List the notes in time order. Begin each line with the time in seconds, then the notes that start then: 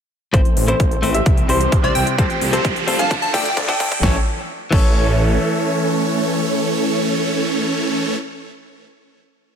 0.33 A1 A2 E3 A3 C4 E4 A4 C5, kick, closed hi-hat, riser
0.45 closed hi-hat
0.57 A1, open hi-hat
0.68 A2 E3 A3 C4 E4 A4 C5, closed hi-hat
0.80 A1, kick, closed hi-hat
0.91 closed hi-hat
1.02 A1 A3 C4 E4 C5, open hi-hat
1.14 E3 G3 C4 G4 E5, closed hi-hat
1.26 C2, kick, closed hi-hat
1.38 closed hi-hat
1.48 C2 C3 E3 G3 C4 E4 G4 C5, open hi-hat
1.61 closed hi-hat
1.72 C2, kick, closed hi-hat
1.83 C3 E3 G3 C4 E4 G4 C5 D5, closed hi-hat
1.95 C2 G5, open hi-hat
2.07 closed hi-hat
2.17 C2 C3 F3 G3 A3 C4 F4 G4 A4 C5, kick, closed hi-hat
2.30 closed hi-hat
2.41 C2, open hi-hat
2.52 C3 F3 G3 A3 C4 F4 G4 A4 C5, closed hi-hat
2.65 C2, kick, closed hi-hat
2.76 closed hi-hat
2.87 C2 G3 C4 F4 A4, open hi-hat
2.99 F3 A3 D4 A4 F5 A5, closed hi-hat
3.11 D2, kick, closed hi-hat
3.22 A5, closed hi-hat
3.33 D2 F3 A3 D4 A4 D5 G5, kick, open hi-hat
3.45 G5, closed hi-hat
3.57 D2, kick, closed hi-hat
3.68 F3 A3 D4 A4 D5 G5, kick, closed hi-hat
3.80 D2, kick, open hi-hat
3.92 kick, closed hi-hat
4.01 A1 E3 A3 C#4 A4 C#5, kick, snare
4.71 A1 E3 A3 C#4 A4 C#5, kick, crash